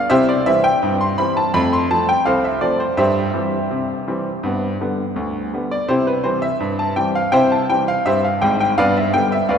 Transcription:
0.10 0.40 C3 loud
0.10 0.31 E4 medium
0.10 0.27 G4 medium
0.10 0.27 C5 loud
0.10 0.28 E5 loud
0.29 0.46 D5 medium
0.46 0.66 E3 medium
0.46 0.66 G3 medium
0.46 0.66 C4 medium
0.46 0.64 E5 loud
0.64 0.98 G5 loud
0.83 1.13 G2 medium
1.01 1.18 C6 medium
1.18 1.38 E3 medium
1.18 1.38 G3 medium
1.18 1.38 C4 medium
1.18 1.36 B5 loud
1.37 1.54 A5 loud
1.54 1.84 F2 loud
1.54 1.75 A3 medium
1.54 1.72 B5 loud
1.73 1.90 C6 loud
1.91 2.10 F3 medium
1.91 2.11 A3 medium
1.91 2.11 C4 medium
1.91 2.08 A5 loud
2.09 2.26 G5 loud
2.25 2.57 C2 medium
2.25 2.43 A4 medium
2.25 2.43 C5 medium
2.25 2.44 F5 loud
2.44 2.62 E5 medium
2.61 2.82 F3 soft
2.61 2.82 A3 medium
2.61 2.82 C4 medium
2.61 2.80 D5 medium
2.80 2.97 C5 medium
2.97 3.29 G2 loud
2.97 5.49 G4 medium
2.97 5.49 C5 medium
2.97 5.48 E5 loud
3.34 3.54 E3 soft
3.34 3.54 G3 medium
3.34 3.55 C4 medium
3.71 4.02 C3 medium
4.08 4.27 E3 medium
4.08 4.28 G3 medium
4.08 4.28 C4 medium
4.43 4.74 G2 medium
4.43 4.65 B3 medium
4.81 5.00 D3 medium
4.81 5.01 G3 soft
4.81 5.01 B3 medium
5.16 5.47 D2 medium
5.53 5.73 D3 soft
5.53 5.73 G3 soft
5.53 5.74 B3 medium
5.71 5.89 D5 medium
5.88 6.19 C3 medium
5.88 6.06 E4 medium
5.88 6.06 G4 medium
5.88 6.07 C5 medium
6.07 6.25 B4 medium
6.24 6.44 E3 medium
6.24 6.44 G3 medium
6.24 6.45 C4 medium
6.24 6.42 C5 medium
6.42 6.77 E5 loud
6.60 6.91 G2 medium
6.79 6.97 A5 medium
6.96 7.16 E3 medium
6.96 7.17 G3 medium
6.96 7.17 C4 medium
6.96 7.15 G5 medium
7.15 7.33 F5 medium
7.32 7.63 C3 loud
7.32 7.54 E4 medium
7.32 7.50 C5 medium
7.32 7.50 E5 medium
7.32 7.51 G5 loud
7.52 7.70 A5 medium
7.70 7.90 E3 soft
7.70 7.90 G3 medium
7.70 7.90 C4 medium
7.70 7.88 G5 loud
7.88 8.06 F5 loud
8.06 8.36 G2 medium
8.06 8.23 G4 medium
8.06 8.23 C5 medium
8.06 8.24 E5 loud
8.24 8.42 F5 medium
8.42 8.71 G#1 medium
8.42 8.71 G#2 medium
8.42 8.59 G5 loud
8.60 8.78 G5 loud
8.78 9.08 G2 loud
8.78 8.99 B3 medium
8.78 8.95 B4 loud
8.78 8.95 D5 medium
8.78 8.96 F5 loud
8.97 9.14 E5 medium
9.14 9.33 D3 medium
9.14 9.34 G3 medium
9.14 9.34 B3 medium
9.14 9.31 G5 loud
9.32 9.50 E5 medium
9.49 9.58 D2 medium
9.49 9.58 B4 medium
9.49 9.58 D5 medium
9.49 9.58 F5 medium

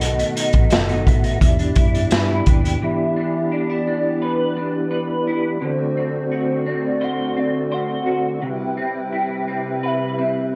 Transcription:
0.00 0.22 B1 medium
0.00 1.49 B2 medium
0.00 1.39 D#3 medium
0.00 1.40 A3 medium
0.00 1.37 B3 medium
0.00 0.35 D#4 medium
0.00 1.38 F#4 medium
0.00 1.39 A4 medium
0.00 0.71 B4 medium
0.00 1.09 D#5 loud
0.00 1.40 F#5 medium
0.00 closed hi-hat medium
0.18 0.54 B3 medium
0.18 closed hi-hat soft
0.36 0.88 D#4 medium
0.36 closed hi-hat medium
0.53 0.68 A1 medium
0.53 1.06 B3 medium
0.53 kick medium
0.53 closed hi-hat soft
0.70 1.07 F#1 medium
0.70 1.48 A4 medium
0.70 snare loud
0.70 closed hi-hat medium
0.89 1.22 D#4 medium
0.89 closed hi-hat soft
1.06 1.35 A1 medium
1.06 1.59 B3 medium
1.06 2.47 E5 loud
1.06 kick medium
1.06 closed hi-hat medium
1.24 1.48 D#4 medium
1.24 closed hi-hat soft
1.39 1.70 E2 medium
1.39 2.78 B3 medium
1.39 2.80 D4 medium
1.39 2.80 E4 medium
1.39 2.79 E4 medium
1.39 2.80 G4 medium
1.39 kick medium
1.39 closed hi-hat medium
1.44 2.81 D5 medium
1.59 1.94 D4 medium
1.59 closed hi-hat soft
1.75 2.05 F#2 medium
1.75 2.30 E4 medium
1.75 kick loud
1.75 closed hi-hat medium
1.95 2.47 D4 medium
1.95 closed hi-hat soft
2.11 2.40 G2 medium
2.11 4.21 B4 medium
2.11 snare loud
2.11 closed hi-hat medium
2.30 2.64 E4 medium
2.46 2.75 D#2 medium
2.46 3.16 D4 medium
2.46 2.85 G5 loud
2.46 kick medium
2.46 closed hi-hat medium
2.64 3.19 E4 medium
2.64 closed hi-hat medium
2.80 5.61 E3 medium
2.80 5.60 E3 medium
2.80 5.58 B3 medium
2.80 5.60 B3 medium
2.80 5.60 D4 medium
2.80 5.59 E4 medium
2.80 5.60 G4 medium
2.80 3.52 E5 loud
2.85 5.60 D5 medium
3.16 3.52 D4 medium
3.52 3.70 D4 medium
3.52 4.25 D5 loud
3.70 5.26 E4 soft
3.87 4.56 D4 medium
4.22 4.90 B4 medium
4.22 5.28 B4 loud
4.57 5.97 D4 medium
4.91 5.69 B4 medium
5.27 5.70 E4 medium
5.27 5.61 B4 medium
5.60 8.43 D3 medium
5.60 8.41 D3 medium
5.60 8.41 A3 medium
5.60 8.38 C4 medium
5.60 8.41 C4 medium
5.60 8.39 F#4 medium
5.60 8.41 F#4 medium
5.60 8.40 A4 medium
5.60 6.69 C5 loud
5.65 8.41 D5 medium
5.97 6.66 C4 medium
6.32 8.05 F#4 medium
6.66 7.36 C4 medium
6.66 7.05 D5 medium
7.01 7.71 C5 medium
7.01 7.41 F#5 loud
7.37 8.77 C4 medium
7.37 7.75 D5 medium
7.72 9.83 C5 medium
7.72 8.43 F#5 loud
8.06 8.50 F#4 medium
8.42 10.55 C3 medium
8.42 10.55 G3 medium
8.42 10.55 C4 medium
8.42 10.55 E4 medium
8.42 10.55 G4 medium
8.42 10.55 B4 medium
8.42 9.86 G5 loud
8.47 10.55 E5 medium
8.77 9.47 C4 medium
9.12 10.55 E4 medium
9.48 10.17 C4 medium
9.83 10.54 B4 medium
9.83 10.55 E5 loud
10.19 10.55 C4 medium

